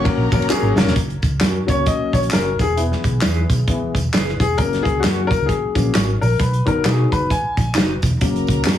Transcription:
Already playing: F#5
0.04 F#3 A#3 C#4 A#4 A#5, kick, ride
0.17 A#1
0.32 A#1 F#3 A#3 C#4 A#4, kick, ride, tambourine
0.39 F#1, ride
0.49 F#3 A#3 C#4 F#4 G#4 A#4, clap, tambourine
0.62 G#1
0.76 F#1 F#3 A#3 C#4 A#4, snare, tambourine
0.86 E1, snare
0.96 F#1, kick, closed hi-hat, tambourine
1.10 closed hi-hat
1.22 C#2, kick, closed hi-hat, tambourine
1.41 F#2 C#4 F#4 A#4, snare, clap, closed hi-hat, tambourine
1.66 C#2 F#3 A#3 C#4 C#5, kick, closed hi-hat, tambourine
1.86 D#5, kick, closed hi-hat, tambourine
2.00 muted fingered electric bass stroke
2.13 A#1 C#5, kick, closed hi-hat, tambourine
2.23 closed hi-hat
2.31 F#1 C#4 F#4 A#4, snare, clap, closed hi-hat, tambourine
2.59 E1 G#4, kick, closed hi-hat, tambourine
2.76 E3 G#3 B3 E4, closed hi-hat, tambourine
2.92 snare
3.04 B1, kick, closed hi-hat, tambourine
3.21 E2 E4 G#4 B4, snare, clap, closed hi-hat, tambourine
3.50 B1, kick, closed hi-hat, tambourine
3.68 E3 G#3 B3, kick, closed hi-hat
3.82 muted fingered electric bass stroke
3.94 E1, kick, closed hi-hat, tambourine
4.13 F#1 E4 G#4 B4, snare, clap, closed hi-hat, tambourine
4.28 snare
4.40 E1 G#4, kick, closed hi-hat, tambourine
4.57 F#1 C#3 F#3 A#3 A#4, kick, closed hi-hat, tambourine
4.73 snare, closed hi-hat
4.83 C#2 G#4, kick, closed hi-hat
5.00 F#4
5.04 F#2 C#4 F#4 A#4, snare, clap, closed hi-hat, tambourine
5.27 A#4, kick
5.31 closed hi-hat, tambourine
5.40 C#2
5.46 G#4, kick, closed hi-hat
5.64 muted fingered electric bass stroke
5.75 A#1 C#3 F#3 A#3, kick, closed hi-hat, tambourine
5.94 G#1 C#4 F#4 A#4, snare, clap, closed hi-hat, tambourine
6.21 A#1 A#4, open hi-hat, tambourine
6.40 B1 B4, kick, closed hi-hat, tambourine
6.53 closed hi-hat
6.66 F#1 D#3 F#3 B3 A#4, kick, closed hi-hat
6.84 B2 D#4 F#4 G#4 B4, snare, clap, closed hi-hat, tambourine
7.12 F#1 B4, kick, closed hi-hat, tambourine
7.30 G#5, kick, closed hi-hat, tambourine
7.43 muted fingered electric bass stroke
7.57 A#1, kick, closed hi-hat, tambourine
7.74 F#1 D#4 F#4 B4, snare, clap, closed hi-hat, tambourine
8.02 E1, kick, closed hi-hat, tambourine
8.21 F#1 C#3 F#3 A#3 A#4 A#5, kick, closed hi-hat, tambourine
8.36 closed hi-hat
8.47 C#2, kick, closed hi-hat, tambourine
8.65 F#2 C#4 F#4 A#4, snare, clap, closed hi-hat, tambourine

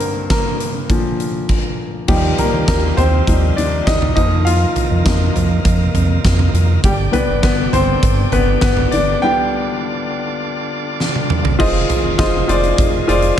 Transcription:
Already playing: G2 D3 A#3 A#4
0.00 closed hi-hat
0.30 A#3 A#4, kick, snare, closed hi-hat
0.60 closed hi-hat
0.90 A#2 D3 F3, kick, closed hi-hat
1.20 closed hi-hat
1.49 kick, crash
2.08 D#2 D#3 F3 G3 D#4 F4 G4, kick, crash
2.38 A#3 A#4, closed hi-hat, floor tom
2.53 D#2
2.68 D#2 A#3 A#4, kick, snare, closed hi-hat
2.97 D#2 C4 C5, closed hi-hat, floor tom
3.27 D#2 F3 G3 D#4, kick, closed hi-hat
3.57 D#2 D4 D5, closed hi-hat
3.87 D#2 D#4 D#5, kick, snare, closed hi-hat
4.02 floor tom
4.16 F2 D#3 F3 A#3 D#4 D#5, kick, closed hi-hat
4.45 F4 F5, closed hi-hat
4.76 closed hi-hat, floor tom
4.91 F2
5.05 F2 F3 A#3 D#4, kick, snare, closed hi-hat
5.35 F2, closed hi-hat, floor tom
5.65 F2, kick, closed hi-hat
5.94 F2, closed hi-hat, floor tom
6.24 F2, kick, snare, closed hi-hat
6.39 floor tom
6.54 F2, closed hi-hat
6.84 G1 D3 G3 D4 G4, kick, closed hi-hat
7.12 G3 B3 D4 B4, closed hi-hat, floor tom
7.29 G1
7.43 G1 B3 B4, kick, snare, closed hi-hat
7.72 G1 C4 C5, closed hi-hat, floor tom
8.03 G1, kick, closed hi-hat
8.32 G1 B3 B4, closed hi-hat, floor tom
8.61 G1 B3 B4, kick, snare, closed hi-hat
8.77 floor tom
8.91 G1 D4 D5, closed hi-hat
9.22 G3 B3 D4 F4 G4 G5
11.00 snare
11.16 high tom
11.30 mid tom
11.45 floor tom
11.59 F1 D#3 G#3 F4 G#4 C5 D#5, kick, crash
11.90 closed hi-hat, floor tom
12.04 F1
12.18 F1 F4 G#4 C5 D#5, kick, snare, closed hi-hat
12.48 F1 F4 G#4 C5 D5, closed hi-hat
12.63 closed hi-hat
12.78 F1, kick, closed hi-hat
13.07 F1 F4 G#4 C5 D5, closed hi-hat
13.22 closed hi-hat

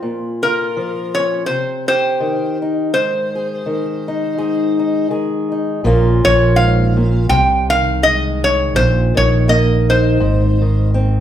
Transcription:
Already playing: F4
0.03 A#2
0.43 F4 A#4
0.77 F3
1.15 C#4 C#5
1.46 C3 C5
1.88 G4 C5
2.20 D#3
2.62 D#4
2.94 G#2 C5
3.35 G#4
3.66 D#3
4.08 D#4
4.38 G#2 G#4
4.79 D#4
5.10 D#3 G#4
5.52 D#4
5.84 A#1 A#2 F3 A#3 C#4 F4
6.25 A#1 F3 C#5
6.56 G#2 F5
6.97 A#2
7.29 C2 C3 G5
7.70 D#3 F5
8.03 G#3 D#5
8.44 C#5
8.75 A#1 A#2 C5
9.15 A#1 D#3 C#5
9.48 A#3 D#5
9.90 D#4 C5
10.20 G#1 G#2
10.61 D#3
10.94 C4

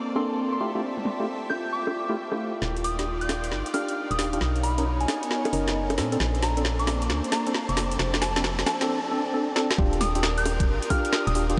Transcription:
Already playing: A#3 C4 F4 A4 C5 D5 A5
0.08 closed hi-hat
0.16 A#3 C4 D4 A4 C6, high bongo
0.30 closed hi-hat
0.53 C6
0.60 A3 E4 F4 G4 E5 C6
0.75 A3 E4 F4 G4, closed hi-hat
0.97 snare
1.05 snare
1.20 A3 E4 F4 G4, closed hi-hat
1.42 E5, closed hi-hat
1.50 G5 G6, high bongo
1.65 closed hi-hat
1.73 D6
1.87 closed hi-hat, high bongo
2.09 A3 E4 F4 G4, closed hi-hat
2.32 A3 E4 F4 G4, closed hi-hat, high bongo
2.54 closed hi-hat
2.62 D#1 D#4 F4 G4 A#4 D5, snare
2.77 closed hi-hat
2.84 D#6, open hi-hat
2.99 D4 F4 G4, snare, closed hi-hat
3.08 D5
3.21 G6, closed hi-hat
3.29 snare, open hi-hat, high bongo
3.44 F5, closed hi-hat
3.52 G1, snare
3.66 closed hi-hat
3.74 D4 F4 G4 F6, open hi-hat, high bongo
3.88 closed hi-hat
4.11 D#1 D#6, closed hi-hat
4.19 D4 F4 G4, snare, open hi-hat
4.33 D4 F4 G4, closed hi-hat
4.41 B1 D#4 F#4 C#5, snare
4.56 closed hi-hat
4.60 C#5 B5, open hi-hat
4.78 C#4 D#4 A#4, closed hi-hat
4.84 B3
5.00 G#5, closed hi-hat
5.08 snare, open hi-hat, high bongo
5.12 A#5
5.23 closed hi-hat
5.31 snare
5.45 closed hi-hat, high bongo
5.53 F#1 C#4 D#4 A#4, open hi-hat
5.68 snare, closed hi-hat
5.90 closed hi-hat, high bongo
5.98 A#2 C4 D4 F4 A4 C5, snare, open hi-hat
6.12 C4 D4 A4, closed hi-hat
6.20 A#1 C5, snare
6.35 closed hi-hat
6.42 A#3 A#5, snare, open hi-hat
6.57 C4 D4 A4, closed hi-hat
6.65 snare
6.79 A5 D6, closed hi-hat
6.87 snare, open hi-hat, high bongo
7.02 closed hi-hat
7.10 D2, snare
7.24 closed hi-hat
7.32 A#5, snare, open hi-hat, high bongo
7.47 C4 D4 A4, closed hi-hat
7.54 snare
7.69 F1 D6, closed hi-hat
7.77 F3 E4 G4, snare, open hi-hat
7.86 A4
7.91 closed hi-hat
7.99 F1, snare
8.14 snare, closed hi-hat
8.22 A5, snare, open hi-hat
8.36 C4 D4 A4, snare, closed hi-hat
8.44 snare
8.50 E5
8.59 snare, closed hi-hat
8.66 A5, snare, open hi-hat, high bongo
8.81 C4 D4 A4, snare, closed hi-hat
8.89 C4 D4 A4
9.11 C4 D4 A4
9.34 C4 D4 A4
9.56 C4 D4 A4, snare
9.71 snare
9.78 D#1 D4 F4 G4 A#4, kick
9.93 closed hi-hat
10.01 D#6, snare, open hi-hat
10.15 D4 F4 G4 D#6, closed hi-hat
10.23 snare
10.38 G6, open hi-hat
10.46 open hi-hat, high bongo
10.60 kick, closed hi-hat
10.68 G1
10.82 closed hi-hat
10.90 D4 F4 G4 F6, kick, open hi-hat, high bongo
11.05 closed hi-hat
11.13 snare
11.27 D#1 D#6, closed hi-hat
11.35 D4 F4 G4 D#6, open hi-hat
11.50 D4 F4 G4, closed hi-hat

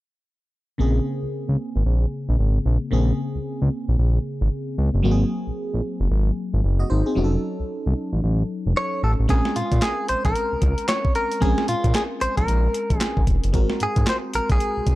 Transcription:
0.78 A#1 C#3 A#3 C4 G#4
1.22 C#2
1.49 C#2
1.75 G#1
1.86 A#1
2.29 A#1
2.39 G#1
2.66 A#1
2.91 A#1 C#3 A#3 C4 G#4
3.35 C#2
3.61 C#2
3.88 A#1
3.99 A#1
4.41 G#1
4.78 C#2
4.94 F#1
5.03 G#1 F#3 A#3 C4 F#4
5.11 G#4
5.47 A#1
5.73 A#1
6.00 F#1
6.11 G#1
6.53 G#1
6.64 F#1
6.79 F#4 D#5
6.90 G#1 D#4 C5
7.06 C4 G#4
7.15 F1 F#3 C#4 D#4 F#4
7.24 A4
7.60 C2
7.86 C2
8.13 A1
8.23 A1
8.66 F1
8.77 C#5
9.03 A1 A4
9.19 A1
9.28 A#1 G#3 C4 C#4 G#4 A#4, kick, closed hi-hat
9.45 snare
9.56 A#2 F4, closed hi-hat
9.72 A#2, kick, closed hi-hat
9.82 G#4, snare, clap, closed hi-hat
10.08 A#1 C5, closed hi-hat
10.25 A#1 A#4, kick, closed hi-hat
10.35 closed hi-hat
10.52 C#2
10.62 C#2, kick, closed hi-hat
10.78 closed hi-hat
10.88 C#5, snare, clap, closed hi-hat
11.05 kick
11.15 A#4, closed hi-hat
11.32 closed hi-hat
11.40 A#1 G#3 C4 C#4 G#4 A#4, kick, closed hi-hat
11.58 snare
11.68 A#2 F4, closed hi-hat
11.84 A#2, kick, closed hi-hat
11.95 G#4, snare, clap, closed hi-hat
12.21 A#1 C5, closed hi-hat
12.37 A#1 A#4, kick, closed hi-hat
12.48 A#1, closed hi-hat
12.74 closed hi-hat
12.90 A#1, kick, closed hi-hat
12.98 G#4, snare, clap, closed hi-hat
13.17 G#1, kick
13.27 F1, kick, closed hi-hat
13.44 F#1, closed hi-hat
13.53 G#1 G#3 C4 F#4 A#4, kick, closed hi-hat
13.70 snare
13.80 G#2 G#4, closed hi-hat
13.96 G#2, kick, closed hi-hat
14.07 C5, snare, clap, closed hi-hat
14.34 A#1 A#4, closed hi-hat
14.50 A#1 G#4, kick, closed hi-hat
14.60 closed hi-hat
14.77 C2
14.87 C2, kick, closed hi-hat

